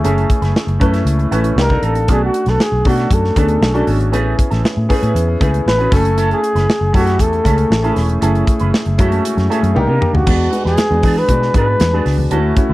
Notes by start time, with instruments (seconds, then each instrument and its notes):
Already playing: grand piano A3 C#4 E4 G#4
0.04 fingered electric bass F#1, grand piano A3 C#4 E4 G#4, clean electric guitar C#4 E4 A4, closed hi-hat
0.18 closed hi-hat
0.30 muted clean electric guitar stroke, kick, closed hi-hat
0.42 fingered electric bass F#1, clean electric guitar C#4 E4 B4, snare, closed hi-hat
0.56 muted clean electric guitar stroke, snare
0.67 fingered electric bass F#1, muted clean electric guitar stroke, closed hi-hat
0.80 fingered electric bass F#2, grand piano A3 C#4 E4 B4, clean electric guitar C#4 E4 A4, kick, closed hi-hat
0.93 clean electric guitar C#4 E4 A4, snare, closed hi-hat
1.05 fingered electric bass C#2, muted clean electric guitar stroke, closed hi-hat
1.19 muted clean electric guitar stroke, closed hi-hat
1.31 fingered electric bass A1, grand piano A3 C#4 E4 B4, clean electric guitar C#4 E4 A4, closed hi-hat
1.44 muted clean electric guitar stroke, closed hi-hat
1.56 fingered electric bass C2, grand piano A#3 D4 D#4 G4, muted clean electric guitar stroke, snare
1.61 flugelhorn A#4
1.69 grand piano A#3 D4 D#4 A4, clean electric guitar C4 D#4 A#4, kick
1.82 fingered electric bass A1, clean electric guitar C4 D#4 A#4, flugelhorn A4, closed hi-hat
1.95 muted clean electric guitar stroke, closed hi-hat
2.08 fingered electric bass B1, grand piano A3 C#4 D4 F#4, clean electric guitar B3 D4 A4, flugelhorn G#4, kick, closed hi-hat
2.24 flugelhorn F#4
2.34 muted clean electric guitar stroke, closed hi-hat
2.46 fingered electric bass B1, clean electric guitar B3 D4 B4, flugelhorn A4, snare, closed hi-hat
2.60 flugelhorn G#4, muted clean electric guitar stroke, snare
2.72 fingered electric bass B1, muted clean electric guitar stroke
2.85 fingered electric bass B2, grand piano A3 C#4 D4 F#4, clean electric guitar B3 D4 A4, kick, open hi-hat
2.89 flugelhorn F#4
2.97 clean electric guitar B3 D4 A4, snare, closed hi-hat
3.11 fingered electric bass F#2, flugelhorn A4, kick, closed hi-hat
3.25 muted clean electric guitar stroke, snare
3.36 fingered electric bass D2, grand piano A3 C#4 D4 G#4, clean electric guitar B3 D4 A4, kick, closed hi-hat
3.48 muted clean electric guitar stroke, closed hi-hat
3.61 fingered electric bass B1, muted clean electric guitar stroke, snare
3.74 grand piano A3 C#4 D4 F#4, clean electric guitar B3 D4 A4, closed hi-hat
3.87 fingered electric bass G#1, clean electric guitar B3 D4 A4, open hi-hat
4.00 muted clean electric guitar stroke, closed hi-hat
4.12 fingered electric bass A1, clean electric guitar A3 C#4 G#4, grand piano B3 C#4 E4 G#4, closed hi-hat
4.38 muted clean electric guitar stroke, kick, closed hi-hat
4.50 fingered electric bass A1, clean electric guitar A3 C#4 A4, snare, closed hi-hat
4.64 muted clean electric guitar stroke, snare
4.77 fingered electric bass A2, muted clean electric guitar stroke
4.89 clean electric guitar A3 C#4 G#4, grand piano B3 C#4 E4 G#4, kick, open hi-hat
5.03 fingered electric bass A2, clean electric guitar A3 C#4 G#4, closed hi-hat
5.15 fingered electric bass E2, muted clean electric guitar stroke, closed hi-hat
5.28 muted clean electric guitar stroke
5.40 fingered electric bass C#2, clean electric guitar A3 C#4 G#4, grand piano B3 C#4 E4 G#4, kick, closed hi-hat
5.52 muted clean electric guitar stroke, closed hi-hat
5.66 fingered electric bass A1, flugelhorn B4, muted clean electric guitar stroke, snare
5.78 clean electric guitar A3 C#4 G#4, grand piano B3 C#4 E4 F#4, closed hi-hat
5.91 fingered electric bass F#1, grand piano A3 C#4 E4 G#5, clean electric guitar C#4 E4 A4, flugelhorn A4, kick, snare, open hi-hat
6.04 muted clean electric guitar stroke, closed hi-hat
6.17 clean electric guitar C#4 E4 A4, closed hi-hat
6.31 flugelhorn G#4, closed hi-hat
6.43 muted clean electric guitar stroke, closed hi-hat
6.55 fingered electric bass F#1, clean electric guitar C#4 E4 B4, snare, closed hi-hat
6.70 snare
6.81 fingered electric bass F#1, muted clean electric guitar stroke
6.93 fingered electric bass F#2, grand piano A3 C#4 E4 G4, clean electric guitar C#4 E4 A4, flugelhorn F#4, kick, open hi-hat
7.00 grand piano G#4
7.07 clean electric guitar C#4 E4 A4, snare, closed hi-hat
7.19 fingered electric bass E2, flugelhorn A4, muted clean electric guitar stroke, kick, closed hi-hat
7.32 muted clean electric guitar stroke, closed hi-hat
7.44 fingered electric bass C#2, grand piano A3 C#4 E4 G#4, clean electric guitar C#4 E4 A4, kick, closed hi-hat
7.57 muted clean electric guitar stroke, closed hi-hat
7.70 fingered electric bass A1, muted clean electric guitar stroke, snare
7.83 grand piano A3 C#4 E4 G#4, clean electric guitar C#4 E4 A4, closed hi-hat
7.96 fingered electric bass E1, clean electric guitar C#4 E4 A4, snare, open hi-hat
8.09 muted clean electric guitar stroke, closed hi-hat
8.21 fingered electric bass F#1, grand piano A3 C#4 E4 G#4, clean electric guitar C#4 E4 A4, closed hi-hat
8.35 closed hi-hat
8.47 muted clean electric guitar stroke, kick, closed hi-hat
8.60 fingered electric bass F#1, clean electric guitar C#4 E4 B4, closed hi-hat
8.73 muted clean electric guitar stroke, snare
8.86 fingered electric bass F#1, muted clean electric guitar stroke, closed hi-hat
8.98 fingered electric bass F#2, grand piano G#3 C#4 E4 F#4, clean electric guitar C#4 E4 A4, kick, closed hi-hat
9.04 grand piano A3
9.12 clean electric guitar C#4 E4 A4, closed hi-hat
9.25 muted clean electric guitar stroke, closed hi-hat
9.37 fingered electric bass F#2, muted clean electric guitar stroke, snare, closed hi-hat
9.49 grand piano A3 C#4 E4 G#4, clean electric guitar C#4 E4 A4, closed hi-hat
9.62 fingered electric bass F#2, muted clean electric guitar stroke, closed hi-hat
9.74 fingered electric bass C2, grand piano A#3 D4 D#4 G4, flugelhorn A#4, muted clean electric guitar stroke, high tom
9.87 fingered electric bass C3, grand piano A#3 D4 D#4 G4, clean electric guitar A#3 D#4 G4
10.00 clean electric guitar A#3 D#4 G4, mid tom
10.13 fingered electric bass D2, flugelhorn F#4, muted clean electric guitar stroke, floor tom
10.26 fingered electric bass E2, grand piano G#3 B3 D4 F#4, clean electric guitar B3 D4 G#4, kick, crash, muted conga
10.51 grand piano G#3 B3 D4 F#4, muted clean electric guitar stroke, closed hi-hat
10.65 fingered electric bass E2, clean electric guitar B3 D4 B4, flugelhorn G#4, snare
10.78 snare, closed hi-hat, high conga
10.90 fingered electric bass E2, grand piano G#3 B3 D4 F#4, muted clean electric guitar stroke
11.03 fingered electric bass E3, clean electric guitar B3 D4 G#4, kick, open hi-hat, low conga
11.16 clean electric guitar B3 D4 G#4, flugelhorn B4, snare
11.28 fingered electric bass B2, grand piano G#3 B3 D4 F#4, kick, closed hi-hat
11.42 muted clean electric guitar stroke, snare
11.54 fingered electric bass G#2, grand piano G#3 B3 D4 F#4, clean electric guitar B3 D4 G#4, flugelhorn B4, kick, closed hi-hat, muted conga
11.68 muted clean electric guitar stroke
11.80 fingered electric bass E2, muted clean electric guitar stroke, snare, closed hi-hat, high conga
11.92 grand piano G#3 B3 D4 F#4, clean electric guitar B3 D4 G#4
12.06 fingered electric bass C#2, clean electric guitar B3 D4 G#4, snare, open hi-hat
12.18 muted clean electric guitar stroke, high conga
12.30 fingered electric bass D2, grand piano A3 C#4 E4 F#4, clean electric guitar C#4 F#4 A4, closed hi-hat, muted conga
12.56 grand piano A3 C#4 E4 F#4, muted clean electric guitar stroke, kick, closed hi-hat
12.69 fingered electric bass D2, clean electric guitar C#4 F#4 B4